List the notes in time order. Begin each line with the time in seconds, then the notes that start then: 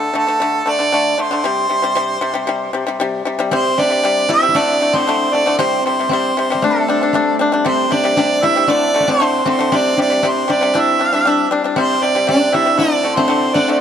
Already playing: A3 A4
0.13 D3 A3 A4
0.27 D3 A3
0.40 D3 A3
0.66 D3 A3
0.70 D5
0.79 D3 A3
0.92 D3 A3
1.18 D3 A3 C5
1.31 D3 A3
1.44 C3 G3
1.69 C3 G3
1.82 C3 G3
1.95 C3 G3
2.21 C3 G3
2.34 C3 G3
2.47 C3 G3
2.73 C3 G3
2.87 C3 G3
3.00 C3 G3
3.25 C3 G3
3.39 C3 G3
3.51 C3 G3 C4 C5
3.78 C3 G3 D4 D5
3.90 C3 G3
4.03 C3 G3
4.29 C3 G3 E4 E5
4.42 C3 G3
4.48 E4
4.55 D3 A3 D4 D5
4.80 D3 A3
4.93 D3 A3 C4 C5
5.07 D3 A3
5.33 D3 A3 D5
5.46 D3 A3
5.58 C3 G3 C4 C5
5.85 C3 G3 C5
5.99 C3 G3
6.09 C3 C4 C5
6.13 G3
6.37 C3 G3 C5
6.50 C3 G3 C4
6.62 G3 A3 D4 A4
6.88 G3 D4
7.01 G3 D4
7.13 G3 A3 D4
7.39 G3 D4
7.52 G3 D4
7.65 C3 G3 C4 C5
7.91 C3 G3 D4 D5
8.04 C3 G3
8.17 C3 G3 D4
8.43 C3 G3 E4 E5
8.56 C3 G3
8.64 D4 E5
8.68 D3 A3 D5
8.94 D3 A3
9.00 D4
9.08 D3 A3 C4 C5
9.20 D3 A3
9.45 D3 A3 C4 C5
9.59 D3 A3
9.72 C3 G3 D4
9.76 D5
9.97 C3 G3 D4 D5
10.10 C3 G3
10.23 C3 G3 C4
10.28 C5
10.48 C3 G3 D4 D5
10.61 C3 G3
10.74 G3 D4 E4
10.79 E5
10.99 G3 D4
11.13 G3 D4
11.25 G3 D4
11.51 G3 D4
11.64 G3 D4
11.76 C3 G3 C4 C5
12.02 C3 G3 D5
12.15 C3 G3
12.27 C3 G3 D4 D5
12.53 C3 G3 E4 E5
12.65 C3 G3
12.78 D3 A3 D4 D5
13.03 D3 A3
13.15 D3 A3 C4 C5
13.28 D3 A3
13.54 D3 A3 D4 D5
13.68 D3 A3 D5